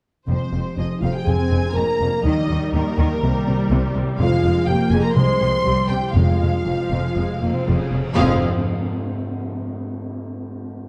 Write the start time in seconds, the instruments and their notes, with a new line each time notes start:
0.27 double bass section F1, cello section F2, harp F3, french horn section C4, violin section C5
0.41 harp G#3
0.53 double bass section F1, cello section F2, harp C4
0.65 harp G4
0.76 double bass section F1, cello section F2, french horn section D#4, harp G#4, violin section D#5
0.91 harp C5
1.01 double bass section F1, cello section F2, french horn section F4, violin section F5, harp G5
1.13 french horn section G4, violin section G5, harp G#5
1.18 violin section G5
1.25 double bass section F1, cello section F2, timpani F2, harp F3, viola section C4, french horn section G#4, violin section G#5
1.29 violin section G#5
1.40 harp A#3
1.51 double bass section F1, cello section F2, harp D4
1.64 harp F4
1.74 double bass section F1, cello section F2, viola section A#3, french horn section A#4, harp A#4, violin section A#5
1.89 harp D5
2.00 double bass section F1, cello section F2, harp F5
2.13 harp A#5
2.24 double bass section D#2, harp D#3, cello section D#3, viola section G3, french horn section D#4, violin section D#5
2.38 harp A#3
2.49 double bass section D#2, cello section D#3, harp D#4
2.62 harp G4
2.72 double bass section D#2, cello section D#3, french horn section A#3, violin section A#4, harp A#4
2.86 harp D#5
2.98 double bass section D#2, cello section D#3, harp G5
3.11 harp A#5
3.22 double bass section C2, harp C3, timpani C3, cello section C3, viola section G3
3.35 harp G3
3.47 double bass section C2, cello section C3, harp C4
3.59 harp E4
3.70 double bass section C2, cello section C3, harp G4
3.83 harp C5
3.95 double bass section C2, cello section C3, harp E5
4.08 harp G5
4.19 double bass section F1, timpani F2, cello section F2, harp F3, viola section G#3, french horn section F4, violin section F5
4.33 harp C4
4.43 double bass section F1, cello section F2, harp F4
4.57 harp G#4
4.66 double bass section F1, cello section F2, viola section A#3, french horn section G4, harp C5, violin section G5
4.80 harp F5
4.90 double bass section F1, cello section F2, french horn section G#4, violin section G#5, harp G#5
5.01 french horn section A#4, violin section A#5, harp C6
5.05 violin section A#5
5.13 double bass section C2, harp C3, timpani C3, viola section G#3, violin section C6
5.17 cello section C3, french horn section C5
5.28 harp G#3
5.40 double bass section C2, cello section C3, harp C4
5.52 harp F4
5.65 double bass section C2, harp C3, cello section C3, viola section G3
5.77 harp G3
5.88 double bass section C2, cello section C3, harp C4, french horn section G4, violin section G5
6.01 harp E4
6.13 double bass section F1, harp F2, cello section F2, timpani F2, viola section G#3, french horn section F4, violin section F5
6.27 harp C3
6.40 double bass section F1, cello section F2, harp C4
6.52 harp F4
6.65 double bass section F1, cello section F2, viola section F3, harp G#4
6.78 harp C5
6.90 double bass section F1, cello section F2, harp F5
7.03 harp G#5
7.16 double bass section F1, cello section F2, viola section G#3, harp F5
7.29 harp C5
7.41 double bass section F1, cello section F2, viola section A#3, harp F4
7.54 harp C3, viola section C4
7.67 double bass section F1, cello section F2, viola section C#3, harp C4
7.79 harp C3
7.92 double bass section F1, cello section F2, harp C4
8.03 harp C3
8.12 harp F2 F3 F4, viola section G#4, violin section F5
8.16 double bass section F1, cello section F2, timpani F2, harp C4 G#4 F5, viola section C4, french horn section F4, violin section F5, tam-tam